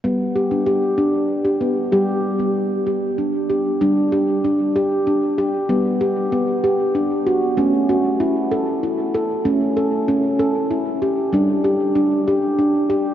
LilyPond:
<<
  \new Staff \with { instrumentName = "Handpan" } { \time 6/8 \key g \lydian \tempo 4. = 64 b8 g'16 d'16 g'8 d'8 r16 g'16 b8 | g'8 r16 b8 r16 g'8 d'8 g'8 | d'8 g'8 d'8 g'8 d'8 g'8 | b8 g'8 b8 g'8 d'8 fis'8 |
cis'8 fis'8 e'8 a'8 e'8 a'8 | cis'8 a'8 cis'8 a'8 e'8 g'8 | d'8 g'8 d'8 g'8 d'8 g'8 | }
  \new Staff \with { instrumentName = "Handpan" } { \clef bass \time 6/8 \key g \lydian g2. | g2. | g2. | g2. |
a2. | a2. | g2. | }
>>